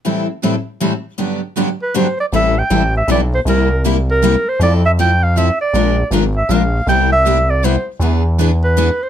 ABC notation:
X:1
M:3/4
L:1/16
Q:"Swing" 1/4=158
K:Ador
V:1 name="Clarinet"
z12 | z6 B2 c2 d2 | [K:Am] e2 g4 e2 d2 c2 | _B4 z2 B4 c2 |
d2 e2 g2 f2 e2 d2- | d4 z2 e2 f4 | g2 e4 d2 c2 z2 | z6 B4 c2 |]
V:2 name="Steel-string acoustic guitar"
[A,,E,G,CEA]2 z2 [A,,E,G,CEA] z3 [A,,E,G,CEA] z3 | [G,,D,F,B,DG]2 z2 [G,,D,F,B,DG] z3 [G,,D,F,B,DG] z3 | [K:Am] [E,G,CEA]2 z2 [E,G,CEA] z3 [E,G,CEA] z3 | [C,G,_B,EG]2 z2 [C,G,B,EG] z3 [C,G,B,EG] z3 |
[F,CEA]2 z2 [F,CEA] z3 [F,CEA] z3 | [F,_A,DF_B]2 z2 [F,A,DFB] z3 [F,A,DFB] z3 | [C,G,B,EG]2 z2 [C,G,B,EG] z3 [C,G,B,EG] z3 | [E,B,D^GB]2 z2 [E,B,DGB] z3 [E,B,DGB] z3 |]
V:3 name="Steel-string acoustic guitar"
[A,,E,G,CEA]2 z2 [A,,E,G,CEA] z3 [A,,E,G,CEA] z3 | [G,,D,F,B,DG]2 z2 [G,,D,F,B,DG] z3 [G,,D,F,B,DG] z3 | [K:Am] [E,G,CEA]2 z2 [E,G,CEA] z3 [E,G,CEA] z3 | [C,G,_B,EG]2 z2 [C,G,B,EG] z3 [C,G,B,EG] z3 |
[F,CEA]2 z2 [F,CEA] z3 [F,CEA] z3 | [F,_A,DF_B]2 z2 [F,A,DFB] z3 [F,A,DFB] z3 | [C,G,B,EG]2 z2 [C,G,B,EG] z3 [C,G,B,EG] z3 | [E,B,D^G]2 z2 [E,B,DG] z3 [E,B,DG] z3 |]
V:4 name="Analog synth bass" clef=bass
z12 | z12 | [K:Am] A,,,4 A,,,4 B,,,4 | C,,12 |
F,,12 | _B,,,4 _A,,,4 B,,,4 | C,,12 | E,,12 |]